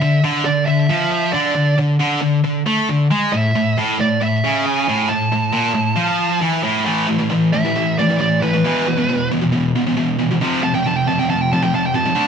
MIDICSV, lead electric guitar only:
0, 0, Header, 1, 2, 480
1, 0, Start_track
1, 0, Tempo, 442152
1, 1689, Time_signature, 4, 2, 24, 8
1, 13326, End_track
2, 0, Start_track
2, 0, Title_t, "Lead electric guitar"
2, 0, Program_c, 0, 29
2, 0, Note_on_c, 0, 76, 105
2, 213, Note_off_c, 0, 76, 0
2, 490, Note_on_c, 0, 74, 81
2, 712, Note_off_c, 0, 74, 0
2, 721, Note_on_c, 0, 76, 108
2, 1195, Note_off_c, 0, 76, 0
2, 1208, Note_on_c, 0, 76, 110
2, 1432, Note_off_c, 0, 76, 0
2, 1440, Note_on_c, 0, 74, 84
2, 1891, Note_off_c, 0, 74, 0
2, 3610, Note_on_c, 0, 76, 116
2, 4058, Note_off_c, 0, 76, 0
2, 4351, Note_on_c, 0, 74, 71
2, 4589, Note_off_c, 0, 74, 0
2, 4597, Note_on_c, 0, 76, 92
2, 5058, Note_on_c, 0, 80, 100
2, 5080, Note_off_c, 0, 76, 0
2, 5523, Note_off_c, 0, 80, 0
2, 5527, Note_on_c, 0, 81, 105
2, 6929, Note_off_c, 0, 81, 0
2, 8174, Note_on_c, 0, 76, 97
2, 8642, Note_off_c, 0, 76, 0
2, 8669, Note_on_c, 0, 74, 88
2, 8896, Note_off_c, 0, 74, 0
2, 8913, Note_on_c, 0, 74, 101
2, 9138, Note_off_c, 0, 74, 0
2, 9140, Note_on_c, 0, 71, 88
2, 10070, Note_off_c, 0, 71, 0
2, 11549, Note_on_c, 0, 81, 94
2, 11658, Note_off_c, 0, 81, 0
2, 11667, Note_on_c, 0, 79, 92
2, 11797, Note_off_c, 0, 79, 0
2, 11797, Note_on_c, 0, 81, 106
2, 11902, Note_off_c, 0, 81, 0
2, 11906, Note_on_c, 0, 79, 95
2, 12020, Note_off_c, 0, 79, 0
2, 12020, Note_on_c, 0, 81, 85
2, 12147, Note_off_c, 0, 81, 0
2, 12147, Note_on_c, 0, 79, 88
2, 12256, Note_off_c, 0, 79, 0
2, 12268, Note_on_c, 0, 81, 100
2, 12390, Note_off_c, 0, 81, 0
2, 12390, Note_on_c, 0, 79, 99
2, 12504, Note_off_c, 0, 79, 0
2, 12504, Note_on_c, 0, 81, 97
2, 12614, Note_off_c, 0, 81, 0
2, 12632, Note_on_c, 0, 79, 90
2, 12737, Note_off_c, 0, 79, 0
2, 12755, Note_on_c, 0, 81, 98
2, 12859, Note_off_c, 0, 81, 0
2, 12879, Note_on_c, 0, 79, 90
2, 12976, Note_off_c, 0, 79, 0
2, 12976, Note_on_c, 0, 81, 107
2, 13326, Note_off_c, 0, 81, 0
2, 13326, End_track
0, 0, End_of_file